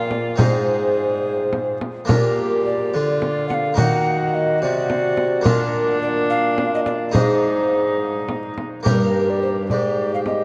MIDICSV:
0, 0, Header, 1, 6, 480
1, 0, Start_track
1, 0, Tempo, 563910
1, 335, Time_signature, 6, 3, 24, 8
1, 8889, End_track
2, 0, Start_track
2, 0, Title_t, "Recorder"
2, 0, Program_c, 0, 74
2, 85, Note_on_c, 0, 74, 77
2, 326, Note_off_c, 0, 74, 0
2, 334, Note_on_c, 0, 72, 75
2, 1515, Note_off_c, 0, 72, 0
2, 1780, Note_on_c, 0, 70, 73
2, 2227, Note_off_c, 0, 70, 0
2, 2259, Note_on_c, 0, 74, 84
2, 2963, Note_off_c, 0, 74, 0
2, 2972, Note_on_c, 0, 78, 80
2, 3015, Note_on_c, 0, 77, 86
2, 3023, Note_off_c, 0, 78, 0
2, 3210, Note_off_c, 0, 77, 0
2, 3215, Note_on_c, 0, 78, 83
2, 3698, Note_on_c, 0, 75, 85
2, 3711, Note_off_c, 0, 78, 0
2, 3934, Note_off_c, 0, 75, 0
2, 3938, Note_on_c, 0, 74, 96
2, 4638, Note_on_c, 0, 70, 82
2, 4650, Note_off_c, 0, 74, 0
2, 5117, Note_off_c, 0, 70, 0
2, 5122, Note_on_c, 0, 74, 99
2, 5176, Note_off_c, 0, 74, 0
2, 5363, Note_on_c, 0, 77, 113
2, 5716, Note_off_c, 0, 77, 0
2, 5741, Note_on_c, 0, 75, 84
2, 5791, Note_off_c, 0, 75, 0
2, 5842, Note_on_c, 0, 74, 80
2, 5896, Note_off_c, 0, 74, 0
2, 6083, Note_on_c, 0, 72, 75
2, 6796, Note_off_c, 0, 72, 0
2, 7541, Note_on_c, 0, 72, 59
2, 7582, Note_on_c, 0, 70, 64
2, 7590, Note_off_c, 0, 72, 0
2, 7914, Note_on_c, 0, 74, 62
2, 7927, Note_off_c, 0, 70, 0
2, 8017, Note_off_c, 0, 74, 0
2, 8022, Note_on_c, 0, 72, 68
2, 8076, Note_off_c, 0, 72, 0
2, 8262, Note_on_c, 0, 74, 76
2, 8613, Note_off_c, 0, 74, 0
2, 8633, Note_on_c, 0, 77, 62
2, 8684, Note_off_c, 0, 77, 0
2, 8737, Note_on_c, 0, 75, 61
2, 8889, Note_off_c, 0, 75, 0
2, 8889, End_track
3, 0, Start_track
3, 0, Title_t, "Viola"
3, 0, Program_c, 1, 41
3, 0, Note_on_c, 1, 65, 80
3, 341, Note_on_c, 1, 68, 60
3, 354, Note_off_c, 1, 65, 0
3, 1612, Note_off_c, 1, 68, 0
3, 1784, Note_on_c, 1, 67, 57
3, 2505, Note_on_c, 1, 65, 58
3, 2518, Note_off_c, 1, 67, 0
3, 3211, Note_off_c, 1, 65, 0
3, 3216, Note_on_c, 1, 66, 53
3, 3917, Note_off_c, 1, 66, 0
3, 3935, Note_on_c, 1, 66, 65
3, 4643, Note_on_c, 1, 62, 74
3, 4655, Note_off_c, 1, 66, 0
3, 6083, Note_off_c, 1, 62, 0
3, 6092, Note_on_c, 1, 63, 64
3, 7345, Note_off_c, 1, 63, 0
3, 7549, Note_on_c, 1, 67, 53
3, 8231, Note_off_c, 1, 67, 0
3, 8265, Note_on_c, 1, 67, 53
3, 8889, Note_off_c, 1, 67, 0
3, 8889, End_track
4, 0, Start_track
4, 0, Title_t, "Harpsichord"
4, 0, Program_c, 2, 6
4, 0, Note_on_c, 2, 46, 58
4, 0, Note_on_c, 2, 58, 51
4, 0, Note_on_c, 2, 62, 53
4, 0, Note_on_c, 2, 65, 53
4, 284, Note_off_c, 2, 58, 0
4, 291, Note_off_c, 2, 62, 0
4, 295, Note_off_c, 2, 65, 0
4, 300, Note_off_c, 2, 46, 0
4, 306, Note_on_c, 2, 60, 50
4, 318, Note_on_c, 2, 63, 47
4, 326, Note_on_c, 2, 68, 51
4, 336, Note_on_c, 2, 44, 50
4, 1506, Note_off_c, 2, 44, 0
4, 1731, Note_off_c, 2, 60, 0
4, 1737, Note_off_c, 2, 63, 0
4, 1741, Note_off_c, 2, 68, 0
4, 1746, Note_on_c, 2, 58, 50
4, 1756, Note_on_c, 2, 62, 44
4, 1766, Note_on_c, 2, 65, 47
4, 1775, Note_on_c, 2, 46, 52
4, 2464, Note_off_c, 2, 46, 0
4, 2501, Note_on_c, 2, 50, 48
4, 3166, Note_off_c, 2, 58, 0
4, 3171, Note_off_c, 2, 62, 0
4, 3176, Note_off_c, 2, 65, 0
4, 3184, Note_off_c, 2, 50, 0
4, 3185, Note_on_c, 2, 58, 47
4, 3196, Note_on_c, 2, 63, 50
4, 3207, Note_on_c, 2, 66, 47
4, 3214, Note_on_c, 2, 51, 54
4, 3894, Note_off_c, 2, 58, 0
4, 3897, Note_off_c, 2, 51, 0
4, 3934, Note_on_c, 2, 48, 58
4, 4601, Note_off_c, 2, 63, 0
4, 4606, Note_off_c, 2, 66, 0
4, 4608, Note_on_c, 2, 58, 56
4, 4612, Note_off_c, 2, 48, 0
4, 4621, Note_on_c, 2, 62, 58
4, 4632, Note_on_c, 2, 65, 60
4, 4644, Note_on_c, 2, 46, 62
4, 6032, Note_off_c, 2, 58, 0
4, 6038, Note_off_c, 2, 62, 0
4, 6044, Note_off_c, 2, 65, 0
4, 6050, Note_off_c, 2, 46, 0
4, 6057, Note_on_c, 2, 63, 46
4, 6065, Note_on_c, 2, 68, 52
4, 6087, Note_on_c, 2, 44, 52
4, 7263, Note_off_c, 2, 44, 0
4, 7490, Note_off_c, 2, 63, 0
4, 7494, Note_off_c, 2, 68, 0
4, 7515, Note_on_c, 2, 58, 41
4, 7526, Note_on_c, 2, 67, 43
4, 7535, Note_on_c, 2, 70, 37
4, 7545, Note_on_c, 2, 43, 46
4, 8229, Note_off_c, 2, 43, 0
4, 8268, Note_on_c, 2, 44, 44
4, 8889, Note_off_c, 2, 44, 0
4, 8889, Note_off_c, 2, 58, 0
4, 8889, Note_off_c, 2, 67, 0
4, 8889, Note_off_c, 2, 70, 0
4, 8889, End_track
5, 0, Start_track
5, 0, Title_t, "Bassoon"
5, 0, Program_c, 3, 70
5, 0, Note_on_c, 3, 46, 78
5, 305, Note_off_c, 3, 46, 0
5, 342, Note_on_c, 3, 44, 64
5, 1519, Note_off_c, 3, 44, 0
5, 1788, Note_on_c, 3, 46, 63
5, 2507, Note_on_c, 3, 50, 53
5, 2519, Note_off_c, 3, 46, 0
5, 3223, Note_on_c, 3, 51, 60
5, 3235, Note_off_c, 3, 50, 0
5, 3934, Note_on_c, 3, 48, 62
5, 3947, Note_off_c, 3, 51, 0
5, 4638, Note_off_c, 3, 48, 0
5, 4644, Note_on_c, 3, 46, 67
5, 6088, Note_on_c, 3, 44, 65
5, 6101, Note_off_c, 3, 46, 0
5, 7298, Note_off_c, 3, 44, 0
5, 7542, Note_on_c, 3, 43, 49
5, 8265, Note_on_c, 3, 44, 50
5, 8278, Note_off_c, 3, 43, 0
5, 8889, Note_off_c, 3, 44, 0
5, 8889, End_track
6, 0, Start_track
6, 0, Title_t, "Frame drum"
6, 92, Note_on_c, 9, 64, 49
6, 177, Note_off_c, 9, 64, 0
6, 329, Note_on_c, 9, 64, 74
6, 415, Note_off_c, 9, 64, 0
6, 1300, Note_on_c, 9, 64, 49
6, 1385, Note_off_c, 9, 64, 0
6, 1543, Note_on_c, 9, 64, 46
6, 1628, Note_off_c, 9, 64, 0
6, 1780, Note_on_c, 9, 64, 75
6, 1865, Note_off_c, 9, 64, 0
6, 2741, Note_on_c, 9, 64, 53
6, 2826, Note_off_c, 9, 64, 0
6, 2981, Note_on_c, 9, 64, 47
6, 3067, Note_off_c, 9, 64, 0
6, 3214, Note_on_c, 9, 64, 77
6, 3299, Note_off_c, 9, 64, 0
6, 4169, Note_on_c, 9, 64, 52
6, 4254, Note_off_c, 9, 64, 0
6, 4404, Note_on_c, 9, 64, 48
6, 4489, Note_off_c, 9, 64, 0
6, 4643, Note_on_c, 9, 64, 78
6, 4728, Note_off_c, 9, 64, 0
6, 5601, Note_on_c, 9, 64, 54
6, 5686, Note_off_c, 9, 64, 0
6, 5841, Note_on_c, 9, 64, 51
6, 5926, Note_off_c, 9, 64, 0
6, 6083, Note_on_c, 9, 64, 75
6, 6168, Note_off_c, 9, 64, 0
6, 7053, Note_on_c, 9, 64, 50
6, 7138, Note_off_c, 9, 64, 0
6, 7301, Note_on_c, 9, 64, 42
6, 7386, Note_off_c, 9, 64, 0
6, 7541, Note_on_c, 9, 64, 66
6, 7627, Note_off_c, 9, 64, 0
6, 8255, Note_on_c, 9, 64, 41
6, 8340, Note_off_c, 9, 64, 0
6, 8732, Note_on_c, 9, 64, 41
6, 8817, Note_off_c, 9, 64, 0
6, 8889, End_track
0, 0, End_of_file